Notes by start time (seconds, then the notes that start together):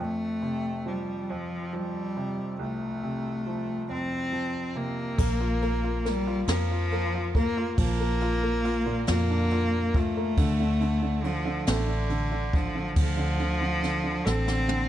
0.00 F2 A3
0.42 C3
0.86 F3 G3
1.30 F2 F3
1.73 F3 G3
2.17 C3
2.59 C2 A3
3.03 C3
3.47 F3
3.90 F2 C4
4.32 F3
4.75 C3 A#3
5.18 A#1 A#3, kick, crash
5.41 F4
5.62 A#3, ride
5.84 F4
6.05 G3 A#3, snare, ride
6.27 F4
6.47 F2 F3 A#3, snare, ride
6.71 F4
6.91 A#3, ride
7.15 F4
7.35 A#3, kick, ride
7.57 F4
7.78 A#1 F3 A#3, kick, ride
8.00 A#3
8.21 F4, ride
8.43 A#3
8.65 F4, ride
8.86 A#2
9.07 F2 A#3 F4, snare, ride
9.30 D4
9.50 F4, ride
9.94 A3 F4, kick, ride
10.17 A#3
10.37 D2 D3, kick, ride
10.60 D3
10.81 D3, ride
11.03 D3
11.24 D3 F3, ride
11.46 D3
11.67 A1 D3 A3, snare, ride
11.89 D3
12.10 D3, ride
12.32 D3
12.53 D3 F3, kick, ride
12.75 D3
12.96 D2 F3, kick, ride
13.17 D3
13.39 D3, ride
13.61 D3
13.83 D3, snare, ride
14.04 D3
14.26 A1 C4 A4, snare
14.47 D3, snare
14.68 D3, high tom